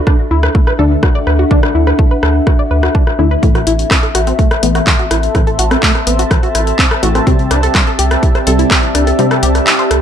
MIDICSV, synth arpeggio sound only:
0, 0, Header, 1, 2, 480
1, 0, Start_track
1, 0, Tempo, 480000
1, 1509, Time_signature, 4, 2, 24, 8
1, 10016, End_track
2, 0, Start_track
2, 0, Title_t, "Synth arpeggio sound"
2, 0, Program_c, 0, 84
2, 69, Note_on_c, 0, 62, 103
2, 159, Note_off_c, 0, 62, 0
2, 309, Note_on_c, 0, 64, 74
2, 399, Note_off_c, 0, 64, 0
2, 431, Note_on_c, 0, 71, 76
2, 466, Note_off_c, 0, 71, 0
2, 549, Note_on_c, 0, 57, 74
2, 609, Note_off_c, 0, 57, 0
2, 671, Note_on_c, 0, 71, 76
2, 729, Note_off_c, 0, 71, 0
2, 789, Note_on_c, 0, 69, 75
2, 849, Note_off_c, 0, 69, 0
2, 1029, Note_on_c, 0, 66, 84
2, 1089, Note_off_c, 0, 66, 0
2, 1151, Note_on_c, 0, 74, 76
2, 1186, Note_off_c, 0, 74, 0
2, 1269, Note_on_c, 0, 71, 73
2, 1329, Note_off_c, 0, 71, 0
2, 1391, Note_on_c, 0, 66, 74
2, 1449, Note_off_c, 0, 66, 0
2, 1509, Note_on_c, 0, 62, 104
2, 1599, Note_off_c, 0, 62, 0
2, 1749, Note_on_c, 0, 64, 75
2, 1839, Note_off_c, 0, 64, 0
2, 1871, Note_on_c, 0, 71, 76
2, 1906, Note_off_c, 0, 71, 0
2, 1988, Note_on_c, 0, 57, 83
2, 2049, Note_off_c, 0, 57, 0
2, 2111, Note_on_c, 0, 71, 76
2, 2169, Note_off_c, 0, 71, 0
2, 2229, Note_on_c, 0, 69, 75
2, 2289, Note_off_c, 0, 69, 0
2, 2469, Note_on_c, 0, 66, 76
2, 2529, Note_off_c, 0, 66, 0
2, 2591, Note_on_c, 0, 74, 78
2, 2626, Note_off_c, 0, 74, 0
2, 2709, Note_on_c, 0, 71, 78
2, 2769, Note_off_c, 0, 71, 0
2, 2831, Note_on_c, 0, 66, 74
2, 2889, Note_off_c, 0, 66, 0
2, 2948, Note_on_c, 0, 62, 100
2, 3039, Note_off_c, 0, 62, 0
2, 3189, Note_on_c, 0, 64, 76
2, 3279, Note_off_c, 0, 64, 0
2, 3311, Note_on_c, 0, 71, 77
2, 3346, Note_off_c, 0, 71, 0
2, 3429, Note_on_c, 0, 52, 83
2, 3489, Note_off_c, 0, 52, 0
2, 3551, Note_on_c, 0, 66, 80
2, 3609, Note_off_c, 0, 66, 0
2, 3668, Note_on_c, 0, 64, 74
2, 3729, Note_off_c, 0, 64, 0
2, 3909, Note_on_c, 0, 60, 84
2, 3969, Note_off_c, 0, 60, 0
2, 4031, Note_on_c, 0, 69, 73
2, 4066, Note_off_c, 0, 69, 0
2, 4149, Note_on_c, 0, 66, 74
2, 4209, Note_off_c, 0, 66, 0
2, 4271, Note_on_c, 0, 60, 77
2, 4329, Note_off_c, 0, 60, 0
2, 4389, Note_on_c, 0, 57, 99
2, 4479, Note_off_c, 0, 57, 0
2, 4628, Note_on_c, 0, 59, 76
2, 4719, Note_off_c, 0, 59, 0
2, 4751, Note_on_c, 0, 66, 76
2, 4786, Note_off_c, 0, 66, 0
2, 4868, Note_on_c, 0, 52, 85
2, 4929, Note_off_c, 0, 52, 0
2, 4991, Note_on_c, 0, 66, 78
2, 5049, Note_off_c, 0, 66, 0
2, 5109, Note_on_c, 0, 64, 74
2, 5169, Note_off_c, 0, 64, 0
2, 5349, Note_on_c, 0, 60, 81
2, 5409, Note_off_c, 0, 60, 0
2, 5471, Note_on_c, 0, 69, 81
2, 5506, Note_off_c, 0, 69, 0
2, 5589, Note_on_c, 0, 66, 79
2, 5649, Note_off_c, 0, 66, 0
2, 5710, Note_on_c, 0, 60, 77
2, 5769, Note_off_c, 0, 60, 0
2, 5828, Note_on_c, 0, 57, 101
2, 5919, Note_off_c, 0, 57, 0
2, 6069, Note_on_c, 0, 59, 75
2, 6159, Note_off_c, 0, 59, 0
2, 6191, Note_on_c, 0, 66, 77
2, 6226, Note_off_c, 0, 66, 0
2, 6309, Note_on_c, 0, 52, 81
2, 6369, Note_off_c, 0, 52, 0
2, 6431, Note_on_c, 0, 66, 79
2, 6489, Note_off_c, 0, 66, 0
2, 6548, Note_on_c, 0, 64, 78
2, 6609, Note_off_c, 0, 64, 0
2, 6788, Note_on_c, 0, 60, 82
2, 6849, Note_off_c, 0, 60, 0
2, 6911, Note_on_c, 0, 69, 79
2, 6946, Note_off_c, 0, 69, 0
2, 7028, Note_on_c, 0, 66, 75
2, 7089, Note_off_c, 0, 66, 0
2, 7151, Note_on_c, 0, 60, 75
2, 7209, Note_off_c, 0, 60, 0
2, 7268, Note_on_c, 0, 60, 105
2, 7359, Note_off_c, 0, 60, 0
2, 7508, Note_on_c, 0, 62, 77
2, 7599, Note_off_c, 0, 62, 0
2, 7631, Note_on_c, 0, 69, 77
2, 7666, Note_off_c, 0, 69, 0
2, 7748, Note_on_c, 0, 55, 82
2, 7809, Note_off_c, 0, 55, 0
2, 7871, Note_on_c, 0, 69, 73
2, 7929, Note_off_c, 0, 69, 0
2, 7989, Note_on_c, 0, 67, 78
2, 8049, Note_off_c, 0, 67, 0
2, 8229, Note_on_c, 0, 64, 77
2, 8289, Note_off_c, 0, 64, 0
2, 8351, Note_on_c, 0, 72, 80
2, 8386, Note_off_c, 0, 72, 0
2, 8469, Note_on_c, 0, 69, 77
2, 8529, Note_off_c, 0, 69, 0
2, 8591, Note_on_c, 0, 64, 75
2, 8649, Note_off_c, 0, 64, 0
2, 8709, Note_on_c, 0, 60, 102
2, 8799, Note_off_c, 0, 60, 0
2, 8949, Note_on_c, 0, 62, 75
2, 9039, Note_off_c, 0, 62, 0
2, 9071, Note_on_c, 0, 69, 78
2, 9106, Note_off_c, 0, 69, 0
2, 9189, Note_on_c, 0, 55, 88
2, 9249, Note_off_c, 0, 55, 0
2, 9311, Note_on_c, 0, 69, 78
2, 9369, Note_off_c, 0, 69, 0
2, 9429, Note_on_c, 0, 67, 77
2, 9489, Note_off_c, 0, 67, 0
2, 9669, Note_on_c, 0, 64, 84
2, 9729, Note_off_c, 0, 64, 0
2, 9791, Note_on_c, 0, 72, 71
2, 9826, Note_off_c, 0, 72, 0
2, 9909, Note_on_c, 0, 69, 78
2, 9969, Note_off_c, 0, 69, 0
2, 10016, End_track
0, 0, End_of_file